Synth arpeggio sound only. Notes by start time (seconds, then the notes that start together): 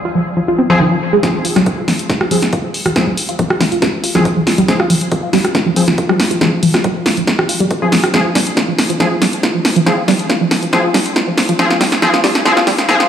0.05 F4
0.15 F3
0.37 F3
0.48 F4
0.58 C4
0.70 F3
0.80 D#3
0.91 F3
1.13 G#3
1.35 F3
1.45 F4
1.56 G3
1.78 F4
1.88 F3
2.10 F3
2.21 F4
2.31 G3
2.53 F4
2.64 F3
2.86 F3
2.96 F4
3.07 G3
3.29 F4
3.39 F3
3.61 F3
3.72 F4
3.82 G3
4.04 F4
4.15 F3
4.37 F3
4.47 F4
4.58 G3
4.80 F4
4.90 F3
5.12 F3
5.23 F4
5.33 G3
5.55 F4
5.66 F3
5.88 F3
5.98 F4
6.09 G3
6.31 F4
6.41 F3
6.63 F3
6.74 F4
6.84 G3
7.06 F4
7.17 F3
7.39 F3
7.49 F4
7.60 G3
7.82 F4
7.92 F3
8.14 F3
8.25 F4
8.35 G3
8.57 F4
8.68 F3
8.90 F3
9.00 F3
9.11 F4
9.22 G3
9.43 F4
9.55 F3
9.76 F3
9.86 F3
9.98 F4
10.08 G3
10.30 F4
10.41 F3
10.62 F3
10.73 F3
10.84 F4
10.94 G3
11.16 F4
11.27 F3
11.49 F3
11.59 F3
11.70 F4
11.81 G3
12.02 F3
12.14 F4
12.24 G3
12.45 F3
12.57 F4
12.67 G3
12.89 F3
13.00 F4